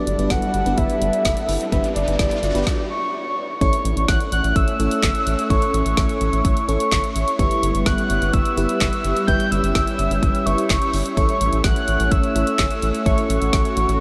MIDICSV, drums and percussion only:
0, 0, Header, 1, 2, 480
1, 0, Start_track
1, 0, Tempo, 472441
1, 1751, Time_signature, 4, 2, 24, 8
1, 14227, End_track
2, 0, Start_track
2, 0, Title_t, "Drums"
2, 73, Note_on_c, 9, 42, 82
2, 174, Note_off_c, 9, 42, 0
2, 192, Note_on_c, 9, 42, 52
2, 293, Note_off_c, 9, 42, 0
2, 307, Note_on_c, 9, 38, 110
2, 307, Note_on_c, 9, 42, 71
2, 310, Note_on_c, 9, 36, 110
2, 409, Note_off_c, 9, 38, 0
2, 409, Note_off_c, 9, 42, 0
2, 412, Note_off_c, 9, 36, 0
2, 430, Note_on_c, 9, 42, 55
2, 531, Note_off_c, 9, 42, 0
2, 548, Note_on_c, 9, 42, 64
2, 649, Note_off_c, 9, 42, 0
2, 671, Note_on_c, 9, 42, 49
2, 773, Note_off_c, 9, 42, 0
2, 789, Note_on_c, 9, 42, 82
2, 791, Note_on_c, 9, 36, 110
2, 890, Note_off_c, 9, 42, 0
2, 892, Note_off_c, 9, 36, 0
2, 910, Note_on_c, 9, 42, 54
2, 1011, Note_off_c, 9, 42, 0
2, 1032, Note_on_c, 9, 42, 68
2, 1134, Note_off_c, 9, 42, 0
2, 1150, Note_on_c, 9, 42, 62
2, 1252, Note_off_c, 9, 42, 0
2, 1268, Note_on_c, 9, 42, 66
2, 1273, Note_on_c, 9, 36, 106
2, 1273, Note_on_c, 9, 38, 121
2, 1370, Note_off_c, 9, 42, 0
2, 1374, Note_off_c, 9, 36, 0
2, 1375, Note_off_c, 9, 38, 0
2, 1390, Note_on_c, 9, 42, 58
2, 1491, Note_off_c, 9, 42, 0
2, 1510, Note_on_c, 9, 46, 74
2, 1612, Note_off_c, 9, 46, 0
2, 1633, Note_on_c, 9, 42, 52
2, 1735, Note_off_c, 9, 42, 0
2, 1751, Note_on_c, 9, 36, 110
2, 1752, Note_on_c, 9, 42, 74
2, 1853, Note_off_c, 9, 36, 0
2, 1853, Note_off_c, 9, 42, 0
2, 1869, Note_on_c, 9, 42, 57
2, 1971, Note_off_c, 9, 42, 0
2, 1992, Note_on_c, 9, 42, 78
2, 2094, Note_off_c, 9, 42, 0
2, 2111, Note_on_c, 9, 42, 54
2, 2212, Note_off_c, 9, 42, 0
2, 2228, Note_on_c, 9, 38, 107
2, 2228, Note_on_c, 9, 42, 72
2, 2230, Note_on_c, 9, 36, 116
2, 2329, Note_off_c, 9, 38, 0
2, 2329, Note_off_c, 9, 42, 0
2, 2332, Note_off_c, 9, 36, 0
2, 2349, Note_on_c, 9, 42, 56
2, 2451, Note_off_c, 9, 42, 0
2, 2468, Note_on_c, 9, 42, 65
2, 2570, Note_off_c, 9, 42, 0
2, 2590, Note_on_c, 9, 42, 49
2, 2692, Note_off_c, 9, 42, 0
2, 2710, Note_on_c, 9, 38, 90
2, 2711, Note_on_c, 9, 36, 111
2, 2812, Note_off_c, 9, 36, 0
2, 2812, Note_off_c, 9, 38, 0
2, 3671, Note_on_c, 9, 36, 114
2, 3672, Note_on_c, 9, 42, 74
2, 3773, Note_off_c, 9, 36, 0
2, 3773, Note_off_c, 9, 42, 0
2, 3789, Note_on_c, 9, 42, 60
2, 3891, Note_off_c, 9, 42, 0
2, 3914, Note_on_c, 9, 42, 83
2, 4016, Note_off_c, 9, 42, 0
2, 4033, Note_on_c, 9, 42, 53
2, 4135, Note_off_c, 9, 42, 0
2, 4150, Note_on_c, 9, 38, 109
2, 4150, Note_on_c, 9, 42, 75
2, 4151, Note_on_c, 9, 36, 118
2, 4252, Note_off_c, 9, 38, 0
2, 4252, Note_off_c, 9, 42, 0
2, 4253, Note_off_c, 9, 36, 0
2, 4272, Note_on_c, 9, 42, 56
2, 4373, Note_off_c, 9, 42, 0
2, 4391, Note_on_c, 9, 42, 69
2, 4492, Note_off_c, 9, 42, 0
2, 4514, Note_on_c, 9, 42, 49
2, 4616, Note_off_c, 9, 42, 0
2, 4632, Note_on_c, 9, 36, 114
2, 4632, Note_on_c, 9, 42, 83
2, 4733, Note_off_c, 9, 36, 0
2, 4733, Note_off_c, 9, 42, 0
2, 4752, Note_on_c, 9, 42, 55
2, 4853, Note_off_c, 9, 42, 0
2, 4874, Note_on_c, 9, 42, 72
2, 4976, Note_off_c, 9, 42, 0
2, 4992, Note_on_c, 9, 42, 63
2, 5094, Note_off_c, 9, 42, 0
2, 5109, Note_on_c, 9, 42, 68
2, 5113, Note_on_c, 9, 36, 118
2, 5114, Note_on_c, 9, 38, 123
2, 5114, Note_on_c, 9, 39, 105
2, 5210, Note_off_c, 9, 42, 0
2, 5215, Note_off_c, 9, 36, 0
2, 5215, Note_off_c, 9, 38, 0
2, 5215, Note_off_c, 9, 39, 0
2, 5230, Note_on_c, 9, 42, 57
2, 5332, Note_off_c, 9, 42, 0
2, 5351, Note_on_c, 9, 42, 77
2, 5453, Note_off_c, 9, 42, 0
2, 5474, Note_on_c, 9, 42, 54
2, 5576, Note_off_c, 9, 42, 0
2, 5591, Note_on_c, 9, 36, 114
2, 5592, Note_on_c, 9, 42, 77
2, 5693, Note_off_c, 9, 36, 0
2, 5693, Note_off_c, 9, 42, 0
2, 5710, Note_on_c, 9, 42, 58
2, 5812, Note_off_c, 9, 42, 0
2, 5834, Note_on_c, 9, 42, 83
2, 5936, Note_off_c, 9, 42, 0
2, 5952, Note_on_c, 9, 42, 55
2, 6053, Note_off_c, 9, 42, 0
2, 6069, Note_on_c, 9, 38, 117
2, 6069, Note_on_c, 9, 42, 76
2, 6071, Note_on_c, 9, 36, 115
2, 6170, Note_off_c, 9, 38, 0
2, 6170, Note_off_c, 9, 42, 0
2, 6172, Note_off_c, 9, 36, 0
2, 6191, Note_on_c, 9, 42, 58
2, 6292, Note_off_c, 9, 42, 0
2, 6308, Note_on_c, 9, 42, 68
2, 6410, Note_off_c, 9, 42, 0
2, 6433, Note_on_c, 9, 42, 52
2, 6534, Note_off_c, 9, 42, 0
2, 6551, Note_on_c, 9, 36, 119
2, 6551, Note_on_c, 9, 42, 87
2, 6652, Note_off_c, 9, 42, 0
2, 6653, Note_off_c, 9, 36, 0
2, 6672, Note_on_c, 9, 42, 56
2, 6774, Note_off_c, 9, 42, 0
2, 6793, Note_on_c, 9, 42, 72
2, 6895, Note_off_c, 9, 42, 0
2, 6911, Note_on_c, 9, 42, 66
2, 7013, Note_off_c, 9, 42, 0
2, 7029, Note_on_c, 9, 42, 67
2, 7033, Note_on_c, 9, 36, 112
2, 7033, Note_on_c, 9, 38, 126
2, 7033, Note_on_c, 9, 39, 104
2, 7130, Note_off_c, 9, 42, 0
2, 7134, Note_off_c, 9, 36, 0
2, 7135, Note_off_c, 9, 38, 0
2, 7135, Note_off_c, 9, 39, 0
2, 7150, Note_on_c, 9, 42, 61
2, 7252, Note_off_c, 9, 42, 0
2, 7271, Note_on_c, 9, 42, 76
2, 7373, Note_off_c, 9, 42, 0
2, 7393, Note_on_c, 9, 42, 52
2, 7495, Note_off_c, 9, 42, 0
2, 7511, Note_on_c, 9, 36, 111
2, 7512, Note_on_c, 9, 42, 74
2, 7612, Note_off_c, 9, 36, 0
2, 7614, Note_off_c, 9, 42, 0
2, 7630, Note_on_c, 9, 42, 61
2, 7731, Note_off_c, 9, 42, 0
2, 7754, Note_on_c, 9, 42, 84
2, 7856, Note_off_c, 9, 42, 0
2, 7871, Note_on_c, 9, 42, 55
2, 7973, Note_off_c, 9, 42, 0
2, 7987, Note_on_c, 9, 38, 111
2, 7987, Note_on_c, 9, 42, 74
2, 7990, Note_on_c, 9, 36, 120
2, 8089, Note_off_c, 9, 38, 0
2, 8089, Note_off_c, 9, 42, 0
2, 8091, Note_off_c, 9, 36, 0
2, 8110, Note_on_c, 9, 42, 58
2, 8212, Note_off_c, 9, 42, 0
2, 8228, Note_on_c, 9, 42, 68
2, 8329, Note_off_c, 9, 42, 0
2, 8351, Note_on_c, 9, 42, 53
2, 8453, Note_off_c, 9, 42, 0
2, 8468, Note_on_c, 9, 42, 84
2, 8470, Note_on_c, 9, 36, 118
2, 8570, Note_off_c, 9, 42, 0
2, 8572, Note_off_c, 9, 36, 0
2, 8590, Note_on_c, 9, 42, 55
2, 8691, Note_off_c, 9, 42, 0
2, 8712, Note_on_c, 9, 42, 73
2, 8814, Note_off_c, 9, 42, 0
2, 8830, Note_on_c, 9, 42, 66
2, 8932, Note_off_c, 9, 42, 0
2, 8948, Note_on_c, 9, 42, 68
2, 8952, Note_on_c, 9, 36, 113
2, 8953, Note_on_c, 9, 38, 122
2, 8953, Note_on_c, 9, 39, 103
2, 9050, Note_off_c, 9, 42, 0
2, 9053, Note_off_c, 9, 36, 0
2, 9054, Note_off_c, 9, 38, 0
2, 9054, Note_off_c, 9, 39, 0
2, 9070, Note_on_c, 9, 42, 61
2, 9172, Note_off_c, 9, 42, 0
2, 9189, Note_on_c, 9, 42, 78
2, 9291, Note_off_c, 9, 42, 0
2, 9312, Note_on_c, 9, 42, 52
2, 9413, Note_off_c, 9, 42, 0
2, 9430, Note_on_c, 9, 36, 115
2, 9430, Note_on_c, 9, 42, 73
2, 9532, Note_off_c, 9, 36, 0
2, 9532, Note_off_c, 9, 42, 0
2, 9550, Note_on_c, 9, 42, 59
2, 9651, Note_off_c, 9, 42, 0
2, 9673, Note_on_c, 9, 42, 83
2, 9775, Note_off_c, 9, 42, 0
2, 9792, Note_on_c, 9, 42, 54
2, 9894, Note_off_c, 9, 42, 0
2, 9908, Note_on_c, 9, 38, 113
2, 9908, Note_on_c, 9, 42, 76
2, 9910, Note_on_c, 9, 36, 117
2, 10010, Note_off_c, 9, 38, 0
2, 10010, Note_off_c, 9, 42, 0
2, 10012, Note_off_c, 9, 36, 0
2, 10032, Note_on_c, 9, 42, 59
2, 10134, Note_off_c, 9, 42, 0
2, 10150, Note_on_c, 9, 42, 70
2, 10252, Note_off_c, 9, 42, 0
2, 10274, Note_on_c, 9, 42, 52
2, 10375, Note_off_c, 9, 42, 0
2, 10391, Note_on_c, 9, 36, 118
2, 10391, Note_on_c, 9, 42, 84
2, 10493, Note_off_c, 9, 36, 0
2, 10493, Note_off_c, 9, 42, 0
2, 10513, Note_on_c, 9, 42, 55
2, 10614, Note_off_c, 9, 42, 0
2, 10634, Note_on_c, 9, 42, 69
2, 10736, Note_off_c, 9, 42, 0
2, 10752, Note_on_c, 9, 42, 63
2, 10854, Note_off_c, 9, 42, 0
2, 10868, Note_on_c, 9, 42, 66
2, 10872, Note_on_c, 9, 36, 113
2, 10873, Note_on_c, 9, 38, 127
2, 10873, Note_on_c, 9, 39, 99
2, 10970, Note_off_c, 9, 42, 0
2, 10974, Note_off_c, 9, 36, 0
2, 10974, Note_off_c, 9, 38, 0
2, 10974, Note_off_c, 9, 39, 0
2, 10990, Note_on_c, 9, 42, 57
2, 11091, Note_off_c, 9, 42, 0
2, 11110, Note_on_c, 9, 46, 81
2, 11211, Note_off_c, 9, 46, 0
2, 11233, Note_on_c, 9, 42, 54
2, 11335, Note_off_c, 9, 42, 0
2, 11351, Note_on_c, 9, 36, 112
2, 11352, Note_on_c, 9, 42, 76
2, 11453, Note_off_c, 9, 36, 0
2, 11454, Note_off_c, 9, 42, 0
2, 11469, Note_on_c, 9, 42, 58
2, 11570, Note_off_c, 9, 42, 0
2, 11592, Note_on_c, 9, 42, 84
2, 11693, Note_off_c, 9, 42, 0
2, 11710, Note_on_c, 9, 42, 54
2, 11812, Note_off_c, 9, 42, 0
2, 11827, Note_on_c, 9, 38, 113
2, 11827, Note_on_c, 9, 42, 73
2, 11830, Note_on_c, 9, 36, 115
2, 11929, Note_off_c, 9, 38, 0
2, 11929, Note_off_c, 9, 42, 0
2, 11932, Note_off_c, 9, 36, 0
2, 11950, Note_on_c, 9, 42, 55
2, 12051, Note_off_c, 9, 42, 0
2, 12067, Note_on_c, 9, 42, 67
2, 12169, Note_off_c, 9, 42, 0
2, 12191, Note_on_c, 9, 42, 50
2, 12292, Note_off_c, 9, 42, 0
2, 12309, Note_on_c, 9, 42, 87
2, 12311, Note_on_c, 9, 36, 115
2, 12410, Note_off_c, 9, 42, 0
2, 12413, Note_off_c, 9, 36, 0
2, 12431, Note_on_c, 9, 42, 54
2, 12532, Note_off_c, 9, 42, 0
2, 12554, Note_on_c, 9, 42, 71
2, 12656, Note_off_c, 9, 42, 0
2, 12671, Note_on_c, 9, 42, 65
2, 12773, Note_off_c, 9, 42, 0
2, 12787, Note_on_c, 9, 42, 67
2, 12792, Note_on_c, 9, 38, 127
2, 12792, Note_on_c, 9, 39, 101
2, 12793, Note_on_c, 9, 36, 118
2, 12889, Note_off_c, 9, 42, 0
2, 12894, Note_off_c, 9, 36, 0
2, 12894, Note_off_c, 9, 38, 0
2, 12894, Note_off_c, 9, 39, 0
2, 12908, Note_on_c, 9, 42, 60
2, 13010, Note_off_c, 9, 42, 0
2, 13029, Note_on_c, 9, 42, 79
2, 13131, Note_off_c, 9, 42, 0
2, 13152, Note_on_c, 9, 42, 54
2, 13254, Note_off_c, 9, 42, 0
2, 13271, Note_on_c, 9, 36, 115
2, 13271, Note_on_c, 9, 42, 75
2, 13372, Note_off_c, 9, 42, 0
2, 13373, Note_off_c, 9, 36, 0
2, 13389, Note_on_c, 9, 42, 59
2, 13491, Note_off_c, 9, 42, 0
2, 13512, Note_on_c, 9, 42, 81
2, 13614, Note_off_c, 9, 42, 0
2, 13631, Note_on_c, 9, 42, 54
2, 13732, Note_off_c, 9, 42, 0
2, 13747, Note_on_c, 9, 38, 118
2, 13747, Note_on_c, 9, 42, 76
2, 13750, Note_on_c, 9, 36, 121
2, 13849, Note_off_c, 9, 38, 0
2, 13849, Note_off_c, 9, 42, 0
2, 13852, Note_off_c, 9, 36, 0
2, 13870, Note_on_c, 9, 42, 57
2, 13972, Note_off_c, 9, 42, 0
2, 13988, Note_on_c, 9, 42, 68
2, 14090, Note_off_c, 9, 42, 0
2, 14112, Note_on_c, 9, 42, 51
2, 14214, Note_off_c, 9, 42, 0
2, 14227, End_track
0, 0, End_of_file